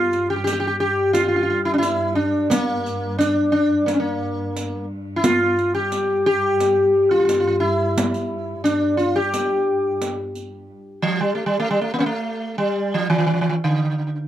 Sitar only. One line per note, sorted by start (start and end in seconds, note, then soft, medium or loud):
0.00 0.26 F4 loud
0.30 0.35 G4 medium
0.36 0.43 G4 medium
0.44 0.51 G4 medium
0.53 0.59 G4 medium
0.60 0.66 G4 medium
0.67 0.75 G4 medium
0.80 1.13 G4 medium
1.13 1.22 F4 medium
1.23 1.27 F4 medium
1.28 1.35 F4 medium
1.36 1.42 F4 medium
1.43 1.49 F4 medium
1.50 1.59 F4 medium
1.65 1.73 E4 medium
1.74 1.78 D4 medium
1.78 2.15 E4 medium
2.15 2.49 D4 medium
2.50 3.18 A#3 medium
3.19 3.51 D4 medium
3.52 3.86 D4 medium
3.86 3.93 A#3 medium
3.94 3.99 C#4 medium
4.00 4.85 A#3 medium
5.16 5.23 E4 medium
5.24 5.71 F4 loud
5.75 6.25 G4 medium
6.26 7.14 G4 loud
7.11 7.18 F4 medium
7.19 7.24 F4 medium
7.25 7.32 F4 medium
7.33 7.39 F4 medium
7.40 7.46 F4 medium
7.47 7.56 F4 medium
7.60 8.64 E4 medium
8.64 8.97 D4 medium
8.97 9.15 F4 medium
9.16 10.14 G4 medium
11.02 11.20 F3 medium
11.21 11.35 G3 medium
11.35 11.46 A3 medium
11.46 11.57 G3 medium
11.60 11.70 A3 medium
11.71 11.81 G3 medium
11.81 11.93 A3 medium
11.94 11.97 A#3 medium
11.99 12.06 A#3 medium
11.99 12.01 C#4 medium
12.06 12.58 A3 medium
12.58 12.96 G3 medium
12.94 13.09 F3 medium
13.10 13.17 E3 medium
13.18 13.25 E3 medium
13.26 13.32 E3 medium
13.34 13.40 E3 medium
13.41 13.48 E3 medium
13.49 13.56 E3 medium
13.64 14.28 D3 medium